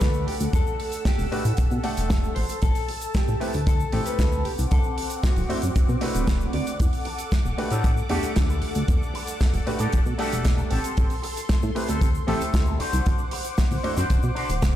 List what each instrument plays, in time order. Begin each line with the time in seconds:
Already playing: grand piano A3 D4 F#4 G4 A4, analog synth pad A4 F#5 D6, clean electric guitar B4
0.01 analog synth bass D2, kick, snare, closed hi-hat, shaker
0.14 shaker
0.27 analog synth bass D2, clean electric guitar G4, open hi-hat
0.40 analog synth bass D2, closed hi-hat, shaker
0.53 analog synth bass E2, clean electric guitar A4, analog synth pad E6, kick, closed hi-hat, shaker
0.67 shaker
0.80 open hi-hat
0.92 closed hi-hat, shaker
1.05 clean electric guitar G4, kick, snare, closed hi-hat, shaker
1.19 analog synth bass E1, open hi-hat, shaker
1.31 analog synth bass A2, grand piano A3 D4 F#4 G4 B4, open hi-hat
1.45 analog synth bass A2, closed hi-hat, shaker
1.57 analog synth bass E1, kick, closed hi-hat, shaker
1.71 analog synth bass B2, shaker
1.83 grand piano A3 D4 G4 A4 F#5, open hi-hat
1.97 analog synth bass E1, closed hi-hat, shaker
2.10 kick, snare, closed hi-hat, shaker
2.24 shaker
2.35 analog synth bass A1, clean electric guitar C5, analog synth pad A5, open hi-hat
2.49 closed hi-hat, shaker
2.62 analog synth bass A1, clean electric guitar A4, kick, closed hi-hat, shaker
2.75 open hi-hat, shaker
2.88 open hi-hat
3.01 closed hi-hat, shaker
3.14 clean electric guitar G4, kick, snare, closed hi-hat, shaker
3.28 analog synth bass A2, shaker
3.40 grand piano A3 C4 E4 G4 B4, open hi-hat
3.53 analog synth bass D2, closed hi-hat, shaker
3.67 clean electric guitar A4, kick, closed hi-hat, shaker
3.80 shaker
3.92 analog synth bass A1, grand piano A3 C4 E4 G4 A4, open hi-hat
4.06 analog synth bass D2, clean electric guitar B4, closed hi-hat, shaker
4.19 analog synth bass D2, kick, snare, closed hi-hat, shaker
4.32 shaker
4.45 analog synth bass C2, analog synth pad C4 F#5 D6, clean electric guitar G4, open hi-hat
4.58 analog synth bass C2, closed hi-hat, shaker
4.71 analog synth bass D2, clean electric guitar A4, kick, closed hi-hat, shaker
4.83 shaker
4.98 open hi-hat
5.10 closed hi-hat, shaker
5.23 clean electric guitar F#4, kick, snare, closed hi-hat, shaker
5.36 analog synth bass D1, open hi-hat, shaker
5.49 analog synth bass F#2, grand piano A3 D4 E4 F#4 C5, open hi-hat
5.62 analog synth bass F#2, closed hi-hat, shaker
5.76 analog synth bass D1, kick, closed hi-hat, shaker
5.89 analog synth bass B2, shaker
6.01 grand piano A3 D4 E4 F#4 B4, open hi-hat
6.14 analog synth bass D1, closed hi-hat, shaker
6.27 kick, snare, closed hi-hat, shaker
6.41 shaker
6.53 analog synth bass D2, clean electric guitar D5, open hi-hat
6.67 closed hi-hat, shaker
6.79 analog synth bass E2, analog synth pad A4, kick, closed hi-hat, shaker
6.93 open hi-hat, shaker
7.05 muted clean electric guitar stroke, open hi-hat
7.18 muted clean electric guitar stroke, closed hi-hat, shaker
7.32 kick, snare, closed hi-hat, shaker
7.45 analog synth bass E1, shaker
7.58 grand piano A3 D4 F#4 G4 B4, open hi-hat
7.70 analog synth bass A2, clean electric guitar D4 F#4 G4 A4, closed hi-hat, shaker
7.84 kick, closed hi-hat, shaker
7.97 shaker
8.09 analog synth bass E2, grand piano G3 A3 D4 A4 F#5, clean electric guitar D4 F#4 G4 A4, open hi-hat
8.23 analog synth bass D2, closed hi-hat, shaker
8.35 analog synth bass D2, muted clean electric guitar stroke, kick, snare, closed hi-hat, shaker
8.49 muted clean electric guitar stroke, shaker
8.61 analog synth bass D2, muted clean electric guitar stroke, open hi-hat
8.75 analog synth bass D2, closed hi-hat, shaker
8.88 analog synth bass E2, kick, closed hi-hat, shaker
9.03 shaker
9.14 muted clean electric guitar stroke, open hi-hat
9.27 muted clean electric guitar stroke, closed hi-hat, shaker
9.40 kick, snare, closed hi-hat, shaker
9.53 analog synth bass E1, open hi-hat, shaker
9.66 analog synth bass A2, grand piano A3 D4 F#4 G4 B4, open hi-hat
9.79 analog synth bass A2, clean electric guitar D4 F#4 G4 A4, closed hi-hat, shaker
9.92 analog synth bass E1, kick, closed hi-hat, shaker
10.06 analog synth bass B2, shaker
10.18 grand piano G3 A3 D4 A4 F#5, clean electric guitar D4 F#4 G4 A4, open hi-hat
10.32 analog synth bass E1, closed hi-hat, shaker
10.44 muted clean electric guitar stroke, kick, snare, closed hi-hat, shaker
10.57 muted clean electric guitar stroke, shaker
10.70 analog synth bass A1, clean electric guitar C4 G4 A4, analog synth pad C6, open hi-hat
10.84 closed hi-hat, shaker
10.97 analog synth bass A1, kick, closed hi-hat, shaker
11.10 open hi-hat, shaker
11.23 muted clean electric guitar stroke, open hi-hat
11.36 muted clean electric guitar stroke, closed hi-hat, shaker
11.49 kick, snare, closed hi-hat, shaker
11.62 analog synth bass A2, shaker
11.75 grand piano A3 C4 E4 G4 B4, open hi-hat
11.88 analog synth bass D2, clean electric guitar C4 G4 A4, closed hi-hat, shaker
12.01 kick, closed hi-hat, shaker
12.15 shaker
12.27 analog synth bass A1, grand piano A3 C4 E4 G4 A4, clean electric guitar C4 G4 A4, open hi-hat
12.41 analog synth bass D2, closed hi-hat, shaker
12.53 analog synth bass D2, muted clean electric guitar stroke, kick, snare, closed hi-hat, shaker
12.66 muted clean electric guitar stroke, shaker
12.79 analog synth bass C2, clean electric guitar D4 F#4 C5, analog synth pad C5 F#5 D6, open hi-hat
12.93 analog synth bass C2, closed hi-hat, shaker
13.06 analog synth bass D2, kick, closed hi-hat, shaker
13.18 shaker
13.31 muted clean electric guitar stroke, open hi-hat
13.44 muted clean electric guitar stroke, closed hi-hat, shaker
13.57 kick, snare, closed hi-hat, shaker
13.71 analog synth bass D1, open hi-hat, shaker
13.83 analog synth bass F#2, grand piano A3 D4 E4 F#4 C5, open hi-hat
13.96 analog synth bass F#2, clean electric guitar D4 F#4 C5, closed hi-hat, shaker
14.10 analog synth bass D1, kick, closed hi-hat, shaker
14.22 analog synth bass B2, shaker
14.35 clean electric guitar D4 F#4 C5, open hi-hat
14.49 analog synth bass D1, closed hi-hat, shaker
14.62 muted clean electric guitar stroke, kick, snare, closed hi-hat, high tom, shaker